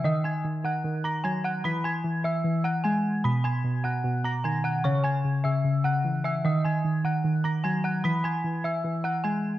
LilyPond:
<<
  \new Staff \with { instrumentName = "Synth bell" } { \time 4/4 \key ees \phrygian \tempo 4 = 150 <ees'' ees'''>8 <aes'' aes'''>4 <ges'' ges'''>4 <bes'' bes'''>8 <aes'' aes'''>8 <ges'' ges'''>8 | <b'' b'''>8 <gis'' gis'''>4 <e'' e'''>4 <ges'' ges'''>8 <gis'' gis'''>4 | <b'' b'''>8 <aes'' aes'''>4 <fis'' fis'''>4 <bes'' bes'''>8 <aes'' aes'''>8 <fis'' fis'''>8 | <des'' des'''>8 <aes'' aes'''>4 <fes'' fes'''>4 <ges'' ges'''>4 <fes'' fes'''>8 |
<ees'' ees'''>8 <aes'' aes'''>4 <ges'' ges'''>4 <bes'' bes'''>8 <aes'' aes'''>8 <ges'' ges'''>8 | <b'' b'''>8 <gis'' gis'''>4 <e'' e'''>4 <ges'' ges'''>8 <gis'' gis'''>4 | }
  \new Staff \with { instrumentName = "Synth keys" } { \clef bass \time 4/4 \key ees \phrygian ees4 ees8 ees8 ees8 ees8 ges4 | e8 e8 e8 e8 e4 gis4 | b,8 b,8 b,8 b,8 b,8 b,8 dis4 | des8 des8 des8 des8 des8 des8 fes4 |
ees8 ees8 ees8 ees8 ees8 ees8 ges4 | e8 e8 e8 e8 e8 e8 gis4 | }
>>